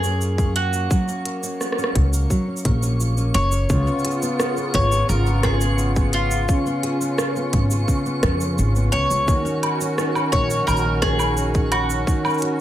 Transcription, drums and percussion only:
0.04 shaker
0.21 shaker
0.38 kick, shaker
0.56 closed hi-hat
0.73 shaker
0.91 kick, shaker
1.08 shaker
1.25 closed hi-hat
1.43 shaker
1.61 cross-stick, shaker
1.72 cross-stick
1.79 shaker
1.84 cross-stick
1.95 kick, closed hi-hat
2.13 shaker
2.30 kick, shaker
2.57 shaker
2.65 kick, closed hi-hat
2.83 shaker
3.00 shaker
3.17 shaker
3.35 closed hi-hat
3.52 shaker
3.70 kick, shaker
3.87 shaker
3.99 shaker
4.05 closed hi-hat
4.11 shaker
4.22 shaker
4.40 cross-stick, shaker
4.57 shaker
4.74 kick, closed hi-hat
4.92 shaker
5.09 shaker
5.26 shaker
5.43 kick, cross-stick, closed hi-hat
5.61 shaker
5.78 shaker
5.96 kick, shaker
6.13 closed hi-hat
6.31 shaker
6.49 kick, shaker
6.66 shaker
6.83 closed hi-hat
7.01 shaker
7.18 cross-stick, shaker
7.36 shaker
7.53 kick, closed hi-hat
7.71 shaker
7.88 kick, shaker
8.06 shaker
8.23 kick, cross-stick, closed hi-hat
8.41 shaker
8.58 shaker
8.76 shaker
8.93 closed hi-hat
9.11 shaker
9.28 kick, shaker
9.46 shaker
9.63 closed hi-hat, low woodblock
9.81 shaker
9.98 cross-stick, shaker
10.15 low woodblock, shaker
10.33 kick, closed hi-hat
10.50 shaker
10.68 low woodblock, shaker
10.77 shaker
11.02 kick, cross-stick, closed hi-hat
11.19 low woodblock, shaker
11.37 shaker
11.55 kick, shaker
11.72 closed hi-hat, low woodblock
11.90 shaker
12.07 kick, shaker
12.25 low woodblock, shaker
12.30 shaker
12.34 shaker
12.38 shaker
12.42 closed hi-hat

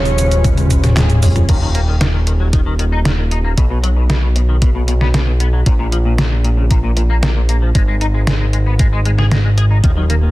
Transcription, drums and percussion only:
0.05 closed hi-hat, cabasa
0.18 closed hi-hat, cabasa
0.31 closed hi-hat, cabasa
0.44 kick, closed hi-hat, high tom, cabasa
0.58 closed hi-hat, high tom, cabasa
0.71 kick, closed hi-hat, cabasa
0.84 snare, closed hi-hat, mid tom, cabasa
0.97 snare, clap, closed hi-hat, mid tom, cabasa
1.10 closed hi-hat, cabasa
1.23 mid tom, open hi-hat, cabasa
1.36 closed hi-hat, mid tom, cabasa
1.49 kick, closed hi-hat, crash
1.75 closed hi-hat
2.01 snare, closed hi-hat
2.27 closed hi-hat
2.53 kick, closed hi-hat
2.79 closed hi-hat
3.05 snare, closed hi-hat
3.31 closed hi-hat
3.58 kick, closed hi-hat
3.84 closed hi-hat
4.10 snare, closed hi-hat
4.36 closed hi-hat
4.62 kick, closed hi-hat
4.88 closed hi-hat
5.01 snare
5.14 snare, closed hi-hat
5.40 closed hi-hat
5.66 kick, closed hi-hat
5.92 closed hi-hat
6.18 snare, closed hi-hat
6.45 closed hi-hat
6.71 kick, closed hi-hat
6.97 closed hi-hat
7.23 snare, closed hi-hat
7.49 closed hi-hat
7.75 kick, closed hi-hat
8.01 closed hi-hat
8.27 snare, closed hi-hat
8.53 closed hi-hat
8.79 kick, closed hi-hat
9.05 closed hi-hat
9.18 snare
9.31 snare, closed hi-hat
9.58 closed hi-hat
9.84 kick, closed hi-hat
10.10 closed hi-hat

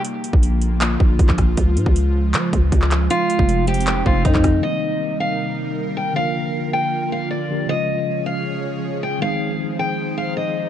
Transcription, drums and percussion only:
0.05 closed hi-hat
0.24 closed hi-hat
0.33 kick
0.43 closed hi-hat
0.62 closed hi-hat
0.81 clap, closed hi-hat
1.00 kick
1.19 kick, closed hi-hat
1.29 kick, clap
1.38 kick, cross-stick, closed hi-hat
1.57 kick, closed hi-hat
1.77 closed hi-hat
1.86 kick
1.96 closed hi-hat
2.34 clap, closed hi-hat
2.53 kick, closed hi-hat
2.72 kick, closed hi-hat
2.82 clap
2.91 clap, closed hi-hat
3.10 closed hi-hat
3.30 closed hi-hat
3.39 kick
3.49 closed hi-hat
3.67 closed hi-hat, open hi-hat
3.74 closed hi-hat
3.80 closed hi-hat
3.87 clap, closed hi-hat
4.06 kick
4.25 kick, closed hi-hat
4.35 kick, clap
4.44 kick, cross-stick, closed hi-hat

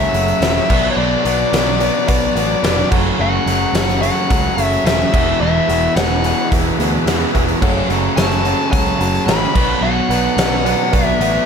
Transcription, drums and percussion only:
0.14 closed hi-hat
0.28 closed hi-hat
0.42 snare, closed hi-hat
0.57 snare
0.70 kick, crash
1.25 closed hi-hat
1.53 snare, closed hi-hat
1.80 closed hi-hat
2.08 kick, closed hi-hat
2.37 closed hi-hat
2.64 snare, closed hi-hat
2.92 kick, crash
3.47 closed hi-hat
3.75 snare, closed hi-hat
3.89 closed hi-hat
4.03 closed hi-hat
4.31 kick, closed hi-hat
4.58 closed hi-hat
4.73 closed hi-hat
4.87 snare, closed hi-hat
5.14 kick, crash
5.70 closed hi-hat
5.97 snare, closed hi-hat
6.24 closed hi-hat
6.52 kick, closed hi-hat
6.80 closed hi-hat
7.07 snare, closed hi-hat
7.35 kick, closed hi-hat
7.49 closed hi-hat
7.62 kick, crash
7.90 closed hi-hat
8.17 snare, closed hi-hat
8.32 closed hi-hat
8.45 closed hi-hat
8.73 kick, closed hi-hat
9.01 closed hi-hat
9.15 closed hi-hat
9.28 snare, closed hi-hat
9.43 snare
9.55 kick, crash
10.11 closed hi-hat
10.38 snare, closed hi-hat
10.66 closed hi-hat
10.93 kick, closed hi-hat
11.21 closed hi-hat

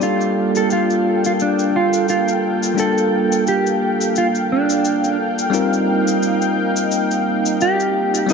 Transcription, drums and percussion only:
0.01 cabasa
0.21 cabasa
0.55 cabasa
0.70 cabasa
0.90 cabasa
1.25 cabasa
1.40 cabasa
1.59 cabasa
1.93 cabasa
2.09 cabasa
2.28 cabasa
2.63 cabasa
2.78 cabasa
2.98 cabasa
3.32 cabasa
3.47 cabasa
3.67 cabasa
4.01 cabasa
4.16 cabasa
4.35 cabasa
4.70 cabasa
4.85 cabasa
5.04 cabasa
5.39 cabasa
5.54 cabasa
5.73 cabasa
6.08 cabasa
6.23 cabasa
6.42 cabasa
6.76 cabasa
6.92 cabasa
7.11 cabasa
7.46 cabasa
7.61 cabasa
7.80 cabasa
8.15 cabasa
8.29 cabasa

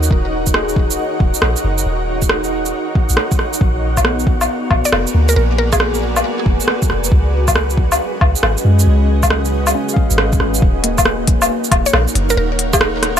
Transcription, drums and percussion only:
0.03 shaker
0.11 kick
0.47 kick, shaker
0.54 cross-stick
0.69 shaker
0.76 kick
0.91 shaker
1.20 kick
1.34 shaker
1.42 cross-stick
1.56 shaker
1.78 shaker
2.22 kick, shaker
2.29 cross-stick
2.44 shaker
2.66 shaker
2.95 kick
3.09 shaker
3.17 cross-stick
3.32 kick, shaker
3.39 cross-stick
3.53 shaker
3.61 kick
3.97 kick, low woodblock, shaker
4.05 cross-stick
4.19 shaker
4.27 kick
4.41 low woodblock, shaker
4.71 kick, low woodblock
4.85 shaker
4.92 cross-stick, low woodblock
5.07 shaker
5.29 shaker
5.73 kick, low woodblock, shaker
5.80 cross-stick
5.94 shaker
6.17 low woodblock, shaker
6.46 kick
6.60 shaker
6.68 cross-stick
6.82 kick, shaker
6.90 cross-stick
7.04 shaker
7.12 kick
7.48 kick, low woodblock, shaker
7.56 cross-stick
7.70 shaker
7.77 kick
7.92 low woodblock, shaker
8.21 kick, low woodblock
8.36 shaker
8.43 cross-stick, low woodblock
8.57 shaker
8.79 shaker
9.23 kick, low woodblock, shaker
9.30 cross-stick
9.45 shaker
9.67 low woodblock, shaker
9.89 shaker
9.96 kick
10.11 shaker
10.18 cross-stick
10.33 kick, shaker
10.40 cross-stick
10.54 shaker
10.62 kick
10.84 open hi-hat
10.98 kick, low woodblock, shaker
11.05 cross-stick
11.27 kick, open hi-hat
11.42 low woodblock, shaker
11.64 shaker
11.71 kick, open hi-hat, low woodblock
11.86 shaker
11.93 cross-stick, low woodblock
12.08 shaker
12.15 open hi-hat
12.30 shaker
12.59 open hi-hat
12.73 kick, low woodblock, shaker
12.81 cross-stick
13.03 cross-stick, open hi-hat

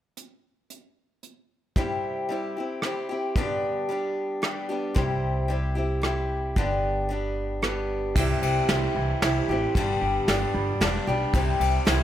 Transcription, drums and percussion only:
0.17 closed hi-hat
0.70 closed hi-hat
1.23 closed hi-hat
1.76 kick
2.82 cross-stick
3.36 kick
4.43 cross-stick
4.96 kick
6.03 cross-stick
6.56 kick
7.63 cross-stick
8.16 kick, crash
8.43 ride
8.69 snare, ride
9.22 snare, ride
9.75 kick, ride
10.28 snare, ride
10.81 snare, ride
11.34 kick, ride
11.61 ride
11.87 snare, ride

